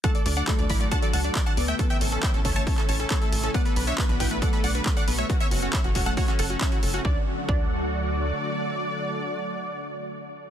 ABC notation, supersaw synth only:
X:1
M:4/4
L:1/16
Q:1/4=137
K:D
V:1 name="Supersaw synth"
[fa] d d [df] d d [db] d [fa] d [fa] d d [fa] d [eg] | A [eg] A A [eg] A A [ca] A A [ca] A [ca] A z A | [df] B B [ce] B B [Bg] B [df] B [df] B B [df] B [ce] | F [ce] F F [ce] F F [Af] F F [Af] F [ce] F z F |
d z3 d12- | d16 |]